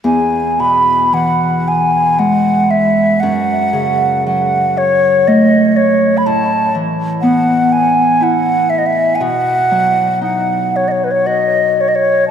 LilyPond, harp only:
\new Staff \with { instrumentName = "Harp" } { \clef bass \time 3/4 \key e \major \tempo 4 = 59 e,8 b,8 e4 gis4 | fis,8 cis8 fis4 a4 | a,8 e8 b4 e'4 | b,8 fis8 dis'4 fis'4 | }